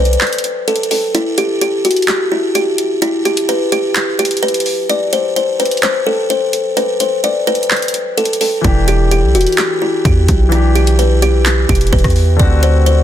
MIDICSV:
0, 0, Header, 1, 5, 480
1, 0, Start_track
1, 0, Key_signature, 1, "minor"
1, 0, Tempo, 468750
1, 1172, Time_signature, 4, 2, 24, 8
1, 13346, End_track
2, 0, Start_track
2, 0, Title_t, "Kalimba"
2, 0, Program_c, 0, 108
2, 0, Note_on_c, 0, 71, 93
2, 651, Note_off_c, 0, 71, 0
2, 693, Note_on_c, 0, 69, 76
2, 920, Note_off_c, 0, 69, 0
2, 934, Note_on_c, 0, 69, 67
2, 1161, Note_off_c, 0, 69, 0
2, 1174, Note_on_c, 0, 64, 82
2, 1401, Note_off_c, 0, 64, 0
2, 1412, Note_on_c, 0, 67, 84
2, 1640, Note_off_c, 0, 67, 0
2, 1653, Note_on_c, 0, 67, 80
2, 1880, Note_off_c, 0, 67, 0
2, 1893, Note_on_c, 0, 66, 67
2, 2120, Note_off_c, 0, 66, 0
2, 2132, Note_on_c, 0, 67, 82
2, 2360, Note_off_c, 0, 67, 0
2, 2372, Note_on_c, 0, 64, 74
2, 2600, Note_off_c, 0, 64, 0
2, 2611, Note_on_c, 0, 67, 86
2, 3063, Note_off_c, 0, 67, 0
2, 3091, Note_on_c, 0, 64, 96
2, 3320, Note_off_c, 0, 64, 0
2, 3332, Note_on_c, 0, 67, 88
2, 3560, Note_off_c, 0, 67, 0
2, 3572, Note_on_c, 0, 71, 88
2, 3800, Note_off_c, 0, 71, 0
2, 3812, Note_on_c, 0, 67, 91
2, 4263, Note_off_c, 0, 67, 0
2, 4291, Note_on_c, 0, 67, 78
2, 4519, Note_off_c, 0, 67, 0
2, 4533, Note_on_c, 0, 71, 90
2, 4984, Note_off_c, 0, 71, 0
2, 5012, Note_on_c, 0, 74, 94
2, 5240, Note_off_c, 0, 74, 0
2, 5253, Note_on_c, 0, 72, 84
2, 5480, Note_off_c, 0, 72, 0
2, 5492, Note_on_c, 0, 72, 79
2, 5720, Note_off_c, 0, 72, 0
2, 5731, Note_on_c, 0, 71, 76
2, 5959, Note_off_c, 0, 71, 0
2, 5973, Note_on_c, 0, 72, 86
2, 6200, Note_off_c, 0, 72, 0
2, 6211, Note_on_c, 0, 69, 89
2, 6439, Note_off_c, 0, 69, 0
2, 6452, Note_on_c, 0, 72, 92
2, 6904, Note_off_c, 0, 72, 0
2, 6931, Note_on_c, 0, 71, 91
2, 7159, Note_off_c, 0, 71, 0
2, 7172, Note_on_c, 0, 72, 70
2, 7400, Note_off_c, 0, 72, 0
2, 7412, Note_on_c, 0, 74, 85
2, 7640, Note_off_c, 0, 74, 0
2, 7652, Note_on_c, 0, 71, 94
2, 8331, Note_off_c, 0, 71, 0
2, 8371, Note_on_c, 0, 69, 80
2, 8599, Note_off_c, 0, 69, 0
2, 8612, Note_on_c, 0, 69, 68
2, 8840, Note_off_c, 0, 69, 0
2, 8852, Note_on_c, 0, 64, 83
2, 9080, Note_off_c, 0, 64, 0
2, 9093, Note_on_c, 0, 67, 87
2, 9320, Note_off_c, 0, 67, 0
2, 9333, Note_on_c, 0, 67, 82
2, 9561, Note_off_c, 0, 67, 0
2, 9573, Note_on_c, 0, 66, 70
2, 9800, Note_off_c, 0, 66, 0
2, 9813, Note_on_c, 0, 67, 80
2, 10040, Note_off_c, 0, 67, 0
2, 10053, Note_on_c, 0, 64, 72
2, 10280, Note_off_c, 0, 64, 0
2, 10293, Note_on_c, 0, 67, 86
2, 10744, Note_off_c, 0, 67, 0
2, 10771, Note_on_c, 0, 64, 95
2, 11000, Note_off_c, 0, 64, 0
2, 11012, Note_on_c, 0, 67, 87
2, 11240, Note_off_c, 0, 67, 0
2, 11252, Note_on_c, 0, 71, 89
2, 11480, Note_off_c, 0, 71, 0
2, 11493, Note_on_c, 0, 67, 88
2, 11944, Note_off_c, 0, 67, 0
2, 11974, Note_on_c, 0, 67, 80
2, 12201, Note_off_c, 0, 67, 0
2, 12213, Note_on_c, 0, 71, 97
2, 12664, Note_off_c, 0, 71, 0
2, 12692, Note_on_c, 0, 74, 94
2, 12920, Note_off_c, 0, 74, 0
2, 12933, Note_on_c, 0, 72, 85
2, 13160, Note_off_c, 0, 72, 0
2, 13171, Note_on_c, 0, 72, 81
2, 13346, Note_off_c, 0, 72, 0
2, 13346, End_track
3, 0, Start_track
3, 0, Title_t, "Grand piano"
3, 0, Program_c, 1, 0
3, 8820, Note_on_c, 1, 52, 64
3, 8852, Note_on_c, 1, 62, 63
3, 8884, Note_on_c, 1, 67, 78
3, 9041, Control_c, 1, 64, 127
3, 10718, Note_off_c, 1, 52, 0
3, 10734, Note_off_c, 1, 62, 0
3, 10740, Note_on_c, 1, 52, 66
3, 10750, Note_off_c, 1, 67, 0
3, 10772, Note_on_c, 1, 62, 59
3, 10804, Note_on_c, 1, 67, 73
3, 12638, Note_off_c, 1, 52, 0
3, 12654, Note_off_c, 1, 62, 0
3, 12660, Note_on_c, 1, 50, 71
3, 12670, Note_off_c, 1, 67, 0
3, 12692, Note_on_c, 1, 60, 62
3, 12705, Control_c, 1, 64, 0
3, 12724, Note_on_c, 1, 66, 79
3, 12853, Control_c, 1, 64, 127
3, 13346, Note_off_c, 1, 50, 0
3, 13346, Note_off_c, 1, 60, 0
3, 13346, Note_off_c, 1, 66, 0
3, 13346, End_track
4, 0, Start_track
4, 0, Title_t, "808-style bass"
4, 0, Program_c, 2, 38
4, 0, Note_on_c, 2, 35, 104
4, 172, Note_off_c, 2, 35, 0
4, 8853, Note_on_c, 2, 28, 106
4, 9452, Note_on_c, 2, 35, 101
4, 9467, Note_off_c, 2, 28, 0
4, 9573, Note_on_c, 2, 28, 98
4, 9588, Note_off_c, 2, 35, 0
4, 9687, Note_off_c, 2, 28, 0
4, 10292, Note_on_c, 2, 40, 106
4, 10523, Note_off_c, 2, 40, 0
4, 10534, Note_on_c, 2, 35, 105
4, 11932, Note_off_c, 2, 35, 0
4, 11973, Note_on_c, 2, 28, 102
4, 12203, Note_off_c, 2, 28, 0
4, 12212, Note_on_c, 2, 28, 108
4, 12328, Note_off_c, 2, 28, 0
4, 12332, Note_on_c, 2, 40, 99
4, 12678, Note_off_c, 2, 40, 0
4, 12692, Note_on_c, 2, 38, 112
4, 13346, Note_off_c, 2, 38, 0
4, 13346, End_track
5, 0, Start_track
5, 0, Title_t, "Drums"
5, 54, Note_on_c, 9, 42, 53
5, 133, Note_off_c, 9, 42, 0
5, 133, Note_on_c, 9, 42, 69
5, 213, Note_off_c, 9, 42, 0
5, 213, Note_on_c, 9, 39, 120
5, 213, Note_on_c, 9, 42, 53
5, 274, Note_off_c, 9, 42, 0
5, 274, Note_on_c, 9, 42, 61
5, 315, Note_off_c, 9, 39, 0
5, 334, Note_off_c, 9, 42, 0
5, 334, Note_on_c, 9, 42, 72
5, 394, Note_off_c, 9, 42, 0
5, 394, Note_on_c, 9, 42, 82
5, 451, Note_off_c, 9, 42, 0
5, 451, Note_on_c, 9, 42, 82
5, 554, Note_off_c, 9, 42, 0
5, 693, Note_on_c, 9, 42, 60
5, 774, Note_off_c, 9, 42, 0
5, 774, Note_on_c, 9, 42, 61
5, 854, Note_off_c, 9, 42, 0
5, 854, Note_on_c, 9, 42, 57
5, 931, Note_on_c, 9, 46, 87
5, 956, Note_off_c, 9, 42, 0
5, 1034, Note_off_c, 9, 46, 0
5, 1173, Note_on_c, 9, 42, 75
5, 1276, Note_off_c, 9, 42, 0
5, 1410, Note_on_c, 9, 42, 82
5, 1513, Note_off_c, 9, 42, 0
5, 1653, Note_on_c, 9, 42, 85
5, 1756, Note_off_c, 9, 42, 0
5, 1892, Note_on_c, 9, 42, 67
5, 1952, Note_off_c, 9, 42, 0
5, 1952, Note_on_c, 9, 42, 58
5, 2012, Note_off_c, 9, 42, 0
5, 2012, Note_on_c, 9, 42, 49
5, 2073, Note_off_c, 9, 42, 0
5, 2073, Note_on_c, 9, 42, 38
5, 2132, Note_on_c, 9, 39, 120
5, 2133, Note_off_c, 9, 42, 0
5, 2133, Note_on_c, 9, 42, 80
5, 2234, Note_off_c, 9, 39, 0
5, 2235, Note_off_c, 9, 42, 0
5, 2614, Note_on_c, 9, 42, 68
5, 2716, Note_off_c, 9, 42, 0
5, 2849, Note_on_c, 9, 42, 80
5, 2952, Note_off_c, 9, 42, 0
5, 3093, Note_on_c, 9, 42, 79
5, 3195, Note_off_c, 9, 42, 0
5, 3332, Note_on_c, 9, 42, 51
5, 3434, Note_off_c, 9, 42, 0
5, 3452, Note_on_c, 9, 42, 84
5, 3555, Note_off_c, 9, 42, 0
5, 3573, Note_on_c, 9, 42, 88
5, 3675, Note_off_c, 9, 42, 0
5, 3811, Note_on_c, 9, 42, 66
5, 3913, Note_off_c, 9, 42, 0
5, 4051, Note_on_c, 9, 39, 120
5, 4051, Note_on_c, 9, 42, 84
5, 4153, Note_off_c, 9, 39, 0
5, 4154, Note_off_c, 9, 42, 0
5, 4292, Note_on_c, 9, 42, 82
5, 4352, Note_off_c, 9, 42, 0
5, 4352, Note_on_c, 9, 42, 73
5, 4412, Note_off_c, 9, 42, 0
5, 4412, Note_on_c, 9, 42, 61
5, 4473, Note_off_c, 9, 42, 0
5, 4473, Note_on_c, 9, 42, 50
5, 4532, Note_off_c, 9, 42, 0
5, 4532, Note_on_c, 9, 42, 45
5, 4592, Note_off_c, 9, 42, 0
5, 4592, Note_on_c, 9, 42, 55
5, 4652, Note_off_c, 9, 42, 0
5, 4652, Note_on_c, 9, 42, 62
5, 4712, Note_off_c, 9, 42, 0
5, 4712, Note_on_c, 9, 42, 71
5, 4770, Note_on_c, 9, 46, 86
5, 4815, Note_off_c, 9, 42, 0
5, 4873, Note_off_c, 9, 46, 0
5, 5013, Note_on_c, 9, 42, 78
5, 5115, Note_off_c, 9, 42, 0
5, 5250, Note_on_c, 9, 42, 80
5, 5352, Note_off_c, 9, 42, 0
5, 5493, Note_on_c, 9, 42, 86
5, 5595, Note_off_c, 9, 42, 0
5, 5731, Note_on_c, 9, 42, 69
5, 5791, Note_off_c, 9, 42, 0
5, 5791, Note_on_c, 9, 42, 58
5, 5851, Note_off_c, 9, 42, 0
5, 5851, Note_on_c, 9, 42, 49
5, 5911, Note_off_c, 9, 42, 0
5, 5911, Note_on_c, 9, 42, 39
5, 5971, Note_on_c, 9, 39, 120
5, 5972, Note_off_c, 9, 42, 0
5, 5972, Note_on_c, 9, 42, 84
5, 6074, Note_off_c, 9, 39, 0
5, 6074, Note_off_c, 9, 42, 0
5, 6452, Note_on_c, 9, 42, 73
5, 6554, Note_off_c, 9, 42, 0
5, 6689, Note_on_c, 9, 42, 79
5, 6791, Note_off_c, 9, 42, 0
5, 6932, Note_on_c, 9, 42, 78
5, 7034, Note_off_c, 9, 42, 0
5, 7169, Note_on_c, 9, 42, 80
5, 7271, Note_off_c, 9, 42, 0
5, 7412, Note_on_c, 9, 42, 88
5, 7514, Note_off_c, 9, 42, 0
5, 7652, Note_on_c, 9, 42, 42
5, 7732, Note_off_c, 9, 42, 0
5, 7732, Note_on_c, 9, 42, 53
5, 7812, Note_off_c, 9, 42, 0
5, 7812, Note_on_c, 9, 42, 69
5, 7892, Note_off_c, 9, 42, 0
5, 7892, Note_on_c, 9, 39, 118
5, 7892, Note_on_c, 9, 42, 52
5, 7952, Note_off_c, 9, 42, 0
5, 7952, Note_on_c, 9, 42, 63
5, 7994, Note_off_c, 9, 39, 0
5, 8012, Note_off_c, 9, 42, 0
5, 8012, Note_on_c, 9, 42, 72
5, 8072, Note_off_c, 9, 42, 0
5, 8072, Note_on_c, 9, 42, 84
5, 8131, Note_off_c, 9, 42, 0
5, 8131, Note_on_c, 9, 42, 80
5, 8233, Note_off_c, 9, 42, 0
5, 8372, Note_on_c, 9, 42, 63
5, 8452, Note_off_c, 9, 42, 0
5, 8452, Note_on_c, 9, 42, 61
5, 8532, Note_off_c, 9, 42, 0
5, 8532, Note_on_c, 9, 42, 59
5, 8610, Note_on_c, 9, 46, 86
5, 8635, Note_off_c, 9, 42, 0
5, 8713, Note_off_c, 9, 46, 0
5, 8852, Note_on_c, 9, 36, 110
5, 8852, Note_on_c, 9, 42, 79
5, 8954, Note_off_c, 9, 42, 0
5, 8955, Note_off_c, 9, 36, 0
5, 9091, Note_on_c, 9, 42, 81
5, 9193, Note_off_c, 9, 42, 0
5, 9333, Note_on_c, 9, 42, 87
5, 9436, Note_off_c, 9, 42, 0
5, 9574, Note_on_c, 9, 42, 67
5, 9633, Note_off_c, 9, 42, 0
5, 9633, Note_on_c, 9, 42, 57
5, 9693, Note_off_c, 9, 42, 0
5, 9693, Note_on_c, 9, 42, 49
5, 9753, Note_off_c, 9, 42, 0
5, 9753, Note_on_c, 9, 42, 39
5, 9812, Note_on_c, 9, 39, 116
5, 9813, Note_off_c, 9, 42, 0
5, 9813, Note_on_c, 9, 42, 83
5, 9915, Note_off_c, 9, 39, 0
5, 9915, Note_off_c, 9, 42, 0
5, 10292, Note_on_c, 9, 36, 107
5, 10293, Note_on_c, 9, 42, 74
5, 10395, Note_off_c, 9, 36, 0
5, 10396, Note_off_c, 9, 42, 0
5, 10531, Note_on_c, 9, 42, 82
5, 10533, Note_on_c, 9, 36, 97
5, 10634, Note_off_c, 9, 42, 0
5, 10636, Note_off_c, 9, 36, 0
5, 10774, Note_on_c, 9, 42, 79
5, 10876, Note_off_c, 9, 42, 0
5, 11013, Note_on_c, 9, 42, 51
5, 11116, Note_off_c, 9, 42, 0
5, 11133, Note_on_c, 9, 42, 85
5, 11235, Note_off_c, 9, 42, 0
5, 11254, Note_on_c, 9, 42, 87
5, 11356, Note_off_c, 9, 42, 0
5, 11492, Note_on_c, 9, 42, 66
5, 11595, Note_off_c, 9, 42, 0
5, 11733, Note_on_c, 9, 39, 121
5, 11734, Note_on_c, 9, 42, 85
5, 11835, Note_off_c, 9, 39, 0
5, 11836, Note_off_c, 9, 42, 0
5, 11973, Note_on_c, 9, 36, 91
5, 11973, Note_on_c, 9, 42, 84
5, 12033, Note_off_c, 9, 42, 0
5, 12033, Note_on_c, 9, 42, 73
5, 12075, Note_off_c, 9, 36, 0
5, 12093, Note_off_c, 9, 42, 0
5, 12093, Note_on_c, 9, 42, 61
5, 12153, Note_off_c, 9, 42, 0
5, 12153, Note_on_c, 9, 42, 49
5, 12212, Note_off_c, 9, 42, 0
5, 12212, Note_on_c, 9, 36, 106
5, 12212, Note_on_c, 9, 42, 43
5, 12273, Note_off_c, 9, 42, 0
5, 12273, Note_on_c, 9, 42, 55
5, 12314, Note_off_c, 9, 36, 0
5, 12332, Note_on_c, 9, 36, 103
5, 12333, Note_off_c, 9, 42, 0
5, 12333, Note_on_c, 9, 37, 106
5, 12333, Note_on_c, 9, 42, 60
5, 12392, Note_off_c, 9, 42, 0
5, 12392, Note_on_c, 9, 42, 74
5, 12434, Note_off_c, 9, 36, 0
5, 12435, Note_off_c, 9, 37, 0
5, 12450, Note_on_c, 9, 46, 86
5, 12495, Note_off_c, 9, 42, 0
5, 12552, Note_off_c, 9, 46, 0
5, 12693, Note_on_c, 9, 36, 115
5, 12693, Note_on_c, 9, 42, 80
5, 12795, Note_off_c, 9, 36, 0
5, 12795, Note_off_c, 9, 42, 0
5, 12930, Note_on_c, 9, 42, 82
5, 13033, Note_off_c, 9, 42, 0
5, 13173, Note_on_c, 9, 42, 86
5, 13276, Note_off_c, 9, 42, 0
5, 13346, End_track
0, 0, End_of_file